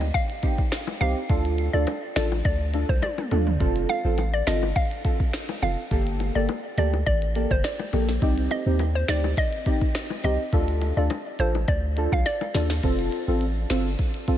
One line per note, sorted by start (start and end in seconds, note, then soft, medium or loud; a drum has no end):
0.00 0.11 D2 loud
0.00 high bongo medium
0.14 0.56 F5 loud
0.14 kick loud
0.14 closed hi-hat medium
0.30 closed hi-hat medium
0.43 0.61 C4 medium
0.43 0.61 D#4 medium
0.43 0.62 G4 medium
0.43 kick loud
0.43 closed hi-hat medium
0.58 kick loud
0.72 finger snap medium
0.72 cross-stick medium
0.72 snare loud
0.72 closed hi-hat medium
0.87 high bongo medium
1.01 1.14 C2 medium
1.01 1.19 C4 medium
1.01 1.19 D#4 medium
1.01 1.19 G4 medium
1.01 1.11 F5 medium
1.01 closed hi-hat medium
1.01 low bongo medium
1.29 1.69 D2 loud
1.29 1.70 D4 loud
1.29 1.70 F4 medium
1.29 1.70 A4 loud
1.29 kick loud
1.29 closed hi-hat medium
1.45 closed hi-hat medium
1.58 closed hi-hat medium
1.73 1.86 D2 loud
1.73 1.91 D4 medium
1.73 1.91 F4 medium
1.73 1.91 A4 medium
1.73 1.82 D5 medium
1.87 cross-stick medium
1.87 closed hi-hat medium
1.87 high bongo medium
2.16 2.42 A1 loud
2.16 2.34 D4 medium
2.16 2.34 F4 medium
2.16 2.35 A4 medium
2.16 2.26 D5 medium
2.16 finger snap medium
2.16 snare loud
2.16 closed hi-hat medium
2.16 low bongo medium
2.32 high bongo medium
2.45 2.84 D2 loud
2.45 2.55 D5 medium
2.45 kick loud
2.45 closed hi-hat medium
2.74 2.92 D4 medium
2.74 2.92 F4 medium
2.74 2.92 A4 medium
2.74 closed hi-hat medium
2.74 high bongo soft
2.89 3.01 C2 medium
2.89 2.98 C5 medium
2.89 kick loud
3.02 3.44 D5 medium
3.02 closed hi-hat medium
3.02 high tom medium
3.02 high bongo medium
3.18 closed hi-hat medium
3.18 mid tom medium
3.18 high bongo medium
3.31 3.57 D#2 medium
3.31 3.50 D4 medium
3.31 3.50 F4 medium
3.31 3.50 A4 medium
3.31 closed hi-hat medium
3.31 mid tom medium
3.31 low bongo medium
3.47 floor tom loud
3.60 3.86 F1 loud
3.60 4.01 C4 loud
3.60 4.01 F4 medium
3.60 4.01 A4 loud
3.60 kick loud
3.60 closed hi-hat medium
3.76 closed hi-hat medium
3.89 3.99 F5 medium
3.89 closed hi-hat medium
3.89 high bongo medium
4.04 4.42 A1 medium
4.04 4.21 C4 medium
4.04 4.22 F4 medium
4.04 4.22 A4 medium
4.18 closed hi-hat medium
4.18 high bongo medium
4.34 4.42 D5 medium
4.47 4.73 G1 medium
4.47 4.65 C4 medium
4.47 4.65 F4 medium
4.47 4.65 A4 medium
4.47 4.57 D#5 medium
4.47 finger snap medium
4.47 snare loud
4.47 closed hi-hat medium
4.47 low bongo medium
4.63 high bongo medium
4.76 5.17 F5 medium
4.76 kick loud
4.76 closed hi-hat medium
4.91 closed hi-hat medium
5.04 5.23 C4 medium
5.04 5.23 F4 medium
5.04 5.23 A4 medium
5.04 kick loud
5.04 closed hi-hat medium
5.20 kick loud
5.33 finger snap medium
5.33 cross-stick medium
5.33 snare loud
5.33 closed hi-hat medium
5.49 high bongo medium
5.62 5.76 F1 loud
5.62 5.81 C4 medium
5.62 5.81 F4 medium
5.62 5.81 A4 medium
5.62 5.72 F5 medium
5.62 closed hi-hat medium
5.62 low bongo medium
5.91 6.30 G1 loud
5.91 6.32 A#3 loud
5.91 6.32 G4 medium
5.91 6.32 A4 loud
5.91 kick loud
5.91 closed hi-hat medium
6.07 closed hi-hat medium
6.20 closed hi-hat medium
6.20 high bongo medium
6.35 6.47 G1 medium
6.35 6.52 A#3 medium
6.35 6.52 G4 medium
6.35 6.53 A4 medium
6.35 6.44 D5 medium
6.49 closed hi-hat medium
6.49 high bongo medium
6.78 7.03 D2 loud
6.78 6.96 A#3 medium
6.78 6.96 G4 medium
6.78 6.96 A4 medium
6.78 6.88 D5 medium
6.78 closed hi-hat medium
6.78 low bongo medium
6.93 high bongo medium
7.06 7.46 A1 medium
7.06 7.16 D5 medium
7.06 kick medium
7.06 closed hi-hat medium
7.22 closed hi-hat medium
7.35 7.54 A#3 medium
7.35 7.54 G4 medium
7.35 7.54 A4 medium
7.35 closed hi-hat medium
7.51 7.63 G1 medium
7.51 7.60 C5 medium
7.51 kick loud
7.64 8.06 D5 medium
7.64 finger snap medium
7.64 cross-stick medium
7.64 snare loud
7.64 closed hi-hat medium
7.79 high bongo medium
7.93 8.19 A#1 medium
7.93 8.11 A#3 medium
7.93 8.12 G4 medium
7.93 8.12 A4 medium
7.93 closed hi-hat medium
7.93 low bongo medium
8.09 snare medium
8.22 8.48 C2 medium
8.22 8.62 C4 loud
8.22 8.62 D#4 medium
8.22 8.63 G4 loud
8.22 kick loud
8.22 closed hi-hat medium
8.38 closed hi-hat medium
8.51 8.61 D#5 medium
8.51 closed hi-hat medium
8.51 high bongo medium
8.66 9.04 D#2 medium
8.66 8.83 C4 medium
8.66 8.83 D#4 medium
8.66 8.83 G4 medium
8.79 closed hi-hat medium
8.79 high bongo medium
8.95 9.04 C5 medium
9.08 9.34 D2 loud
9.08 9.27 C4 medium
9.08 9.27 D#4 medium
9.08 9.27 G4 medium
9.08 9.19 D5 medium
9.08 finger snap medium
9.08 snare loud
9.08 closed hi-hat medium
9.08 low bongo medium
9.24 high bongo medium
9.37 9.79 D#5 medium
9.37 kick loud
9.37 closed hi-hat medium
9.53 closed hi-hat medium
9.66 9.84 C4 medium
9.66 9.85 D#4 medium
9.66 9.85 G4 medium
9.66 kick loud
9.66 closed hi-hat medium
9.81 kick loud
9.95 finger snap medium
9.95 cross-stick medium
9.95 snare loud
9.95 closed hi-hat medium
10.10 high bongo medium
10.24 10.38 C2 medium
10.24 10.42 C4 medium
10.24 10.42 D#4 medium
10.24 10.42 G4 medium
10.24 10.34 D#5 medium
10.24 closed hi-hat medium
10.24 low bongo medium
10.53 10.92 D2 loud
10.53 10.93 D4 loud
10.53 10.93 F4 medium
10.53 10.93 A4 loud
10.53 kick loud
10.53 closed hi-hat medium
10.68 closed hi-hat medium
10.81 closed hi-hat medium
10.81 high bongo medium
10.97 11.09 D2 loud
10.97 11.14 D4 medium
10.97 11.14 F4 medium
10.97 11.14 A4 medium
10.97 11.06 D5 medium
11.10 cross-stick medium
11.10 closed hi-hat medium
11.10 high bongo medium
11.39 11.65 A1 loud
11.39 11.57 D4 medium
11.39 11.58 F4 medium
11.39 11.58 A4 medium
11.39 11.49 C5 medium
11.39 closed hi-hat medium
11.55 high bongo medium
11.68 12.07 D2 loud
11.68 11.78 D5 medium
11.68 kick loud
11.68 closed hi-hat medium
11.97 12.15 D4 medium
11.97 12.16 F4 medium
11.97 12.16 A4 medium
11.97 closed hi-hat medium
12.12 12.24 C2 medium
12.12 12.21 F5 medium
12.12 kick loud
12.26 12.67 D5 medium
12.26 snare medium
12.26 closed hi-hat medium
12.41 closed hi-hat medium
12.41 high bongo medium
12.54 12.80 D#2 medium
12.54 12.73 D4 medium
12.54 12.73 F4 medium
12.54 12.73 A4 medium
12.54 snare medium
12.54 closed hi-hat medium
12.54 low bongo medium
12.70 snare loud
12.83 13.09 F1 loud
12.83 13.24 C4 loud
12.83 13.24 F4 medium
12.83 13.24 A4 loud
12.83 kick loud
12.83 closed hi-hat medium
12.99 closed hi-hat medium
13.12 closed hi-hat medium
13.28 13.65 A1 medium
13.28 13.45 C4 medium
13.28 13.45 F4 medium
13.28 13.45 A4 medium
13.41 closed hi-hat medium
13.70 13.96 G1 medium
13.70 13.88 C4 medium
13.70 13.89 F4 medium
13.70 13.89 A4 medium
13.70 finger snap medium
13.70 snare loud
13.70 closed hi-hat medium
13.99 kick medium
13.99 closed hi-hat medium
14.14 closed hi-hat medium
14.28 14.38 C4 medium
14.28 14.38 F4 medium
14.28 14.38 A4 medium
14.28 kick loud
14.28 closed hi-hat medium